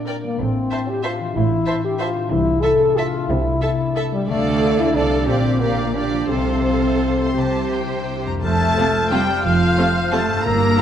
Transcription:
Already playing: A#2 G3 A#3 C4
0.07 D4 A#4 D5 G5
0.24 G3 A#3
0.39 A1 A2 C4
0.55 C4
0.71 E4 C5 E5 A5
0.88 D4 G4
1.03 E4 F4 C5 E5 A5
1.20 E3
1.35 A1 A2 E4
1.51 C4
1.66 E4 C5 E5 A5
1.84 D4 G4
1.99 E4 F4 C5 E5 A5
2.16 E3
2.30 C2 C3 E4
2.47 A3
2.62 E4 A4 E5 A5
2.80 D4
2.97 E4 F4 A4 E5 A5
3.14 C4
3.29 C2 C3 E4
3.45 A3
3.61 E4 A4 E5 A5
3.79 D4
3.95 E4 A4 E5 A5
4.12 G3 C4
4.28 D2 D3 A3 A4 D5 F5
4.44 A3
4.61 F4
4.79 E4
4.95 C2 C3 D4 F4 A4 D5 F5
5.12 D4
5.27 A#1 A#2 C4 G4 D5 F5
5.44 D4
5.60 A#3 F4 G4 D5 F5
5.79 E4
5.95 D4 F4 G4 D5 F5
6.13 F3
6.29 C2 C3 C4 A4 C5 F5
6.66 F4 F5
6.85 E4
7.03 F4
7.20 A3 C6
7.37 C2 C3 G4 C5 A5
7.71 E4 G5
7.90 D4
8.08 E4
8.25 F2 G3 A#5
8.30 C4
8.34 F4
8.39 A4
8.43 F1 A3 A4 C5 A5 F6
8.77 C3 A3 C4 F4
9.11 C3 G3 A3 C4 F4 G4 G5
9.44 F1 F3 F4 F5
9.77 C3 A3 C4 F4
10.11 C3 A3 C4 F4 A4 A5
10.28 G2
10.32 C4
10.37 E4
10.41 A#4 A#5
10.45 G1 G2 A#3 A#4 E6
10.78 A#3 C4 E4

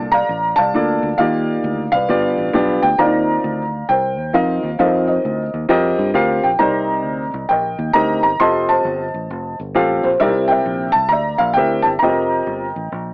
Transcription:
Already playing: C2 A4 D5 A5
0.12 D5 F5 A#5
0.29 A1
0.56 C2 D5 F5 A5
0.74 D2 A#3 D4 F4 A4 D5
1.03 D2
1.18 D#2 D#3 A#3 D#4 F4 G4 A#4 D5 F5
1.64 D2
1.92 C2 B4 D5 F5
2.09 G1 G2 B3 D4 F4 G4 D5
2.38 A1
2.53 B1 B3 D4 F4 G4 D5
2.82 D2 G5
2.98 D#2 D#3 C4 D4 F4 A#4 D5 F5 A#5
3.04 D#4
3.44 D2
3.89 C2 A#4 C5 G5
4.18 D#2
4.33 F2 C4 D#4 F4 A#4 C5 D#5 F5
4.63 D#2
4.79 F2 C4 D#4 F4 A4 A#4 C5 D#5 F5
4.85 A#4
5.07 A#4 C5 D#5
5.25 D2
5.54 D#2
5.69 F2 C4 F4 G4 A#4 D#5
5.99 G2
6.14 D2 C4 F4 G4 A#4 F5
6.44 A#1 G5
6.59 C2 C3 C4 D#4 G4 A#4 C5 D5 D#5 A#5
7.05 D2
7.34 C2
7.49 A#1 A#4 D#5 G5
7.79 D#2
7.93 D2 C4 D#4 G4 A#4 D#5 A#5
8.23 G1 A#5
8.40 F1 C4 F4 G4 A4 D#5 A5 C6
8.69 C5 D#5 A5
8.85 G1
9.14 A1
9.30 F1
9.59 G1
9.75 A1 C4 F4 G4 A4 F5
10.03 A#1 C5
10.20 C2 C3 C4 D#4 G4 A#4 D5 E5
10.26 E4
10.48 A#4 E5 G5
10.66 A#1
10.92 C2 A5
11.09 D2 D5 E5 A#5
11.38 A#1 F5
11.53 D2 C4 E4 G4 G5
11.58 A#4 E5
11.82 G1 A5
11.99 F1 C4 D#5 G5 A#5
12.03 F4 G4 A4 D#5
12.09 A#4
12.47 G1
12.76 A1
12.92 A#1

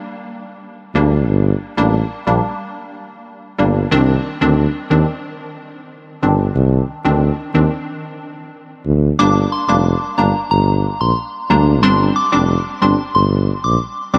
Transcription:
0.95 D2 G3 A#3 D4
1.28 G1
1.77 A1 G3 A#3 D4
2.27 A#1 G3 A#3 D4
3.58 G1 G3 A#3 D4
3.91 C2 D#3 C4 D4
4.41 D2 D#3 C4 D4
4.90 D#2 D#3 C4 D4
6.22 G1 D#3 C4 D4
6.55 C2
7.05 D2 D#3 C4 D4
7.54 D#2 D#3 C4 D4
8.86 D2
9.19 G1 G3 A#3 D4 D6
9.52 C6
9.68 F1 G3 A#3 D4 D6
10.18 G1 G3 A#3 D4 A#5
10.51 G1 A#5
11.00 A#1 C6
11.50 D2 G3 A#3 D4 A#5
11.83 G1 G3 C4 D4 C6
12.16 D6
12.32 F1 G3 C4 D4 D6
12.82 G1 G3 C4 D4 C6
13.15 G1 C6
13.64 A#1 D6
14.14 C2 G3 C4 D4 D6

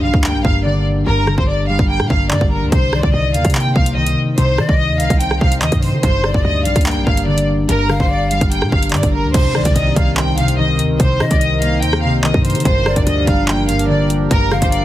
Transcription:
Already playing: G2 D3 A#3 C4
0.03 A#1 G3 F5
0.14 D2, kick
0.24 A#3 G5, clap
0.34 A#1
0.45 G1 G2 F5, kick
0.64 D3 D5
1.06 G1 G2 A#4
1.27 D3, cross-stick
1.38 G1 C5, kick
1.48 D5
1.69 G3 F5
1.79 G1, kick
1.89 A#3 G5
2.00 A#2, cross-stick
2.10 G1 G2 F5, kick
2.31 G2 D3 D5, clap
2.41 G1, kick
2.51 A#4
2.62 D2
2.72 C2 C3 C5, kick, closed hi-hat
2.93 D#3 D5, cross-stick
3.03 C2 D5, kick
3.14 C2 D#5
3.34 D#2 A#3 F5, closed hi-hat
3.45 C3, kick, closed hi-hat
3.50 closed hi-hat
3.55 C4 G5, clap
3.60 closed hi-hat
3.76 C2 C3 F5, kick
3.86 closed hi-hat
3.96 D#3 D#5
4.07 closed hi-hat
4.38 C2 C3 C5, closed hi-hat
4.58 C3 D#3 D#5, cross-stick
4.69 C2 D5, kick
4.79 D#5
4.89 D#2
5.00 C2 A#3 F5, closed hi-hat
5.10 C2, kick, closed hi-hat
5.20 C4 G5, closed hi-hat
5.31 cross-stick
5.41 C2 C3 F5, kick
5.52 closed hi-hat
5.61 D#2 D#3 D#5, clap, closed hi-hat
5.72 G2, kick, closed hi-hat
5.83 C5, open hi-hat
5.93 D#3
6.03 G1 G2 C5, kick, closed hi-hat
6.24 D3 D5, cross-stick
6.34 G1 D5, kick
6.45 D2 D#5
6.65 A#1 G3 F5, closed hi-hat
6.76 D2, kick, closed hi-hat
6.81 closed hi-hat
6.86 A#3 G5, clap, closed hi-hat
6.91 closed hi-hat
6.96 A#1
7.07 G1 G2 F5, kick
7.17 closed hi-hat
7.27 D3 D5
7.38 closed hi-hat
7.68 G1 G2 A#4, closed hi-hat
7.89 D3 F5, cross-stick
8.00 G1 C5, kick
8.11 D5
8.31 G3 F5, closed hi-hat
8.41 G1, kick, closed hi-hat
8.52 A#3 G5, closed hi-hat
8.62 A#2, cross-stick
8.72 G1 G2 F5, kick
8.83 closed hi-hat
8.89 G2 D3 D5, clap, closed hi-hat
8.96 closed hi-hat
9.03 G1, kick, closed hi-hat
9.14 A#4
9.24 D2
9.34 C2 C3 D#3 C4 G4 A#4 C5, kick, closed hi-hat, crash, impact
9.55 D#3 D5, cross-stick
9.65 C2 D5, kick, closed hi-hat
9.76 C2 D#5, closed hi-hat
9.96 C2 A#3 F5, kick, closed hi-hat
10.17 C4 G5, clap
10.38 C3 F5, closed hi-hat
10.48 closed hi-hat
10.58 D#3 D#5
10.79 D#2, closed hi-hat
10.89 C2
11.00 C2 C3 C5, kick, closed hi-hat
11.20 C3 D#3 D#5, cross-stick
11.31 C2 D5, kick, closed hi-hat
11.41 D#5, closed hi-hat
11.62 A#3 F5, closed hi-hat
11.82 D#2 C4 G5, closed hi-hat
11.93 cross-stick
12.03 C3 F5
12.08 C2
12.24 D#3 D#5, clap
12.34 G2, kick
12.45 C5, closed hi-hat, open hi-hat
12.50 closed hi-hat
12.55 D#3, closed hi-hat
12.60 closed hi-hat
12.65 G1 G2 F3 D4 C5, kick, closed hi-hat
12.86 D3 D5, cross-stick
12.96 G1 D5, kick, closed hi-hat
13.07 D2 D#5, closed hi-hat
13.27 G1 G3 F5, kick, closed hi-hat
13.48 A#3 G5, clap
13.69 G2 F5, closed hi-hat
13.79 closed hi-hat
13.89 D3 D5
14.10 closed hi-hat
14.30 G1 G2 A#4, kick, closed hi-hat
14.51 D3 F5, cross-stick
14.62 G1 C5, kick, closed hi-hat
14.72 D5, closed hi-hat

